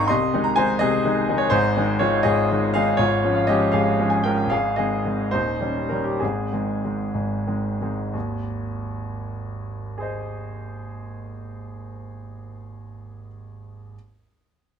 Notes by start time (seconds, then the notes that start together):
Already playing: G#1 G#2 D#3 C4 D#4 G#4 A#4 C5 F5 G5 G#5 A#5 C#6
0.08 C2 C3 D#5 C6
0.34 D#3 G#3 D#4
0.44 A#5
0.56 D#3 G#3 D#4 C5 G#5
0.79 C2 C3 G#4 D#5
1.05 D#3 G#3 D#4
1.28 D#3 G#3 D#4
1.38 C#5
1.50 G#1 G#2 D#4 C5
1.77 D#3 G#3 D#4
1.99 D#3 G#3 D#4 F4 C#5
2.23 G#1 G#2 G#4 D#5
2.51 D#3 G#3 D#4
2.74 D#3 G#3 D#4 G#4 F5
2.97 G#1 G#2 F4 C#5
3.23 F3 G#3 C#4
3.35 F5
3.47 F3 G#3 C#4 G4 D#5
3.72 G#1 G#2 G#4 F5
3.99 F3 G#3 C#4
4.10 G#5
4.23 F3 G#3 C#4 A#4 G5
4.47 G#1 F5
4.51 G#2 G#4
4.76 D#3 G#3 C4 G#4 D#5
5.05 D#3 G#3 C4
5.31 D#1 D#2 D#4 C5
5.61 D#3 G3 C#4
5.89 D#3 G3 C#4 A#4
6.04 G4
6.20 G#1 G#2 C4 G#4
6.52 D#3 G#3 C4
6.84 D#3 G#3 C4
7.14 G#1 G#2
7.47 D#3 G#3 C4
7.81 D#3 G#3 C4
8.13 G#1 D#2
9.98 G#4 C5
10.02 D#5